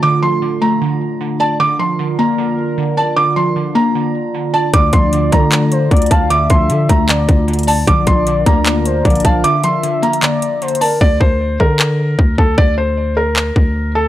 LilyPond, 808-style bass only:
\new Staff \with { instrumentName = "808-style bass" } { \clef bass \time 4/4 \key bes \lydian \tempo 4 = 153 r1 | r1 | r1 | d,8 d,4 d4. d,8 d,8~ |
d,8 d,8 d8 d,4 d,4. | bes,,8 bes,,4 d,4. bes,,8 bes,,8 | r1 | d,8 d,4 d4. d,8 d,8 |
d,2~ d,8 d,4. | }